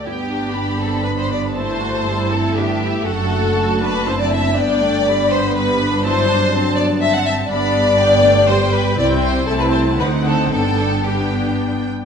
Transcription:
<<
  \new Staff \with { instrumentName = "Violin section" } { \time 3/4 \key g \major \tempo 4 = 120 g''4 b''2 | a''2 e''4 | fis''4 a''2 | g''4 b''4 b''4 |
a''4 a''4 a''4 | b''4 g''4 g''4 | g''4 a''4 fis''4 | g''4 g''4. r8 | }
  \new Staff \with { instrumentName = "Violin section" } { \time 3/4 \key g \major g'4. a'8 b'16 c''16 d''8 | c''4. a'8 g'4 | a'4. b'8 c''16 d''16 e''8 | d''4. c''8 b'4 |
c''4. d''8 e''16 fis''16 e''8 | d''2 c''8 b'8 | d''8 c''8 a'16 b'16 c''8 b'8 a'8 | a'4 g'4 r4 | }
  \new Staff \with { instrumentName = "Viola section" } { \time 3/4 \key g \major << { e'8 d'8 b4 d'4 | e'8 fis'8 e'4 d'8 e'8 | fis'2 e'4 | d'4 b2 |
e'8 d'8 c'8 b8 c'4 | d'2 g'4 | e'4 e'4 ees'4 | d'4 d'4. r8 | } \\ { b4 d'8 c'8 b4 | a4 g8 c'8 b4 | a4 a8 d'8 c'4 | b8 a8 g4 g8 d'8~ |
d'2. | b4 b8 a8 g4 | c'4 c'4 c'4 | b4 b4. r8 | } >> }
  \new Staff \with { instrumentName = "French horn section" } { \time 3/4 \key g \major << { d'2. | e'2. | d'2.~ | d'2. |
d'2. | b2. | e'4 e'4 ees'4 | d'4 d'4. r8 | } \\ { b2. | a2.~ | a2. | b2. |
fis2. | g2. | g4 a4 c'4 | b4 b4. r8 | } >> }
  \new Staff \with { instrumentName = "Cello section" } { \clef bass \time 3/4 \key g \major g,2.~ | g,2. | fis,2. | g,2.~ |
g,2. | g,2. | c4 c4 d4 | g,2~ g,8 r8 | }
  \new Staff \with { instrumentName = "Double bass section" } { \clef bass \time 3/4 \key g \major g,,2.~ | g,,2. | fis,,2. | g,,2.~ |
g,,2. | g,,2. | c,4 c,4 d,4 | g,,2~ g,,8 r8 | }
>>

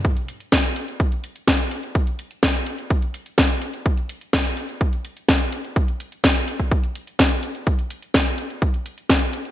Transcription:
\new DrumStaff \with { instrumentName = "Drums" } \drummode { \time 4/4 \tempo 4 = 126 <hh bd>16 hh16 hh16 hh16 <hh bd sn>16 hh16 hh16 hh16 <hh bd>16 hh16 hh16 hh16 <hh bd sn>16 hh16 hh16 hh16 | <hh bd>16 hh16 hh16 hh16 <hh bd sn>16 hh16 hh16 hh16 <hh bd>16 hh16 hh16 hh16 <hh bd sn>16 hh16 hh16 hh16 | <hh bd>16 hh16 hh16 hh16 <hh bd sn>16 hh16 hh16 hh16 <hh bd>16 hh16 hh16 hh16 <hh bd sn>16 hh16 hh16 hh16 | <hh bd>16 hh16 hh16 hh16 <hh bd sn>16 hh16 hh16 <hh bd>16 <hh bd>16 hh16 hh16 hh16 <hh bd sn>16 hh16 hh16 hh16 |
<hh bd>16 hh16 hh16 hh16 <hh bd sn>16 hh16 hh16 hh16 <hh bd>16 hh16 hh16 hh16 <hh bd sn>16 hh16 hh16 hh16 | }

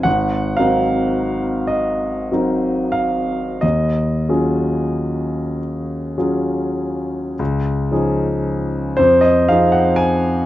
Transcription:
\new Staff \with { instrumentName = "Grand piano" } { \time 6/8 \key des \major \tempo 4. = 35 << { ges''8 f''4 ees''4 f''8 | ees''4. r4. | r4. c''16 ees''16 f''16 ges''16 aes''8 | } \\ { aes,,8 <ges c' ees' bes'>4. <ges c' ees' bes'>4 | ees,8 <ges des' f' aes'>4. <ges des' f' aes'>4 | des,8 <f des' ees' aes'>4 f,8 <f c' ees' aes'>4 | } >> }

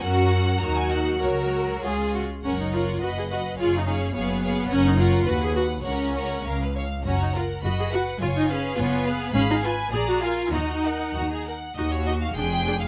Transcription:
<<
  \new Staff \with { instrumentName = "Violin section" } { \time 2/4 \key fis \major \tempo 4 = 103 fis''4 ais''16 gis''16 fis''8 | cis''4 r4 | fis''8 fis''8 fis''8 fis''8 | eis''8 eis''8 eis''8 eis''8 |
fis''8 fis''8 fis''8 fis''8 | fis''8 fis''8 eis''8 eis''8 | ais''8 fis''8 b''8 fis''8 | gis''8 eis''8 gis''8 eis''8 |
\key ees \minor ces'''8 aes''8 bes''8 aes''8 | bes''8 ges''8 bes''8 ges''8 | ees''16 des''16 ees''16 f''16 g''8. f''16 | }
  \new Staff \with { instrumentName = "Violin section" } { \time 2/4 \key fis \major <fis' ais'>4 <fis' ais'>4 | <fis' ais'>4 <eis' gis'>8 r8 | <ais' cis''>8 <ais' cis''>8 <b' dis''>8 <b' dis''>8 | <gis' cis''>8 <gis' cis''>8 <gis' cis''>8 <gis' cis''>8 |
<ais' cis''>8 <ais' cis''>8 b'8 b'8 | <ais' cis''>8 <ais' cis''>8 ais'16 b'16 cis''8 | <fis' cis''>8 ais'8 <fis' dis''>8 <b' fis''>8 | <eis' cis''>8 <gis' b'>8 <eis' cis''>8 <gis' b'>8 |
\key ees \minor <aes' f''>8 <ces'' aes''>8 <aes' d''>8 <bes' f''>8 | <ges' ees''>8 <bes' ges''>8 ges'16 aes'16 bes'8 | ges'4 aes'4 | }
  \new Staff \with { instrumentName = "Viola section" } { \time 2/4 \key fis \major <fis cis'>4 <fis dis'>4 | <fis fis'>4 <gis cis'>8 r8 | cis'16 dis'16 eis'8 fis'16 gis'16 fis'8 | eis'16 dis'16 cis'8 b4 |
cis'16 dis'16 eis'8 fis'16 gis'16 fis'8 | cis'4 r4 | cis'16 dis'16 eis'8 fis'16 gis'16 fis'8 | eis'16 dis'16 cis'8 b4 |
\key ees \minor des'16 ees'16 f'8 aes'16 ges'16 f'8 | ees'4. r8 | <ees' ges'>8 <ees' ges'>8 <d' aes'>8 <d' aes'>8 | }
  \new Staff \with { instrumentName = "Cello section" } { \clef bass \time 2/4 \key fis \major fis'4 fis'4 | ais'4 gis'8 fis'8 | fis,4 fis,4 | fis,4 fis,4 |
fis,4 dis,4 | cis,4 cis,4 | fis,4 fis,4 | fis,4 fis,4 |
\key ees \minor aes,4 bes,4 | ees4 ees4 | ees,4 f,4 | }
  \new Staff \with { instrumentName = "Double bass section" } { \clef bass \time 2/4 \key fis \major fis,4 dis,4 | cis,4 cis,8 r8 | fis,,4 fis,,4 | fis,,4 fis,,4 |
fis,,4 dis,4 | cis,4 cis,4 | fis,,4 fis,,4 | fis,,4 fis,,4 |
\key ees \minor aes,,4 bes,,4 | ees,4 ees,4 | ees,4 f,,4 | }
>>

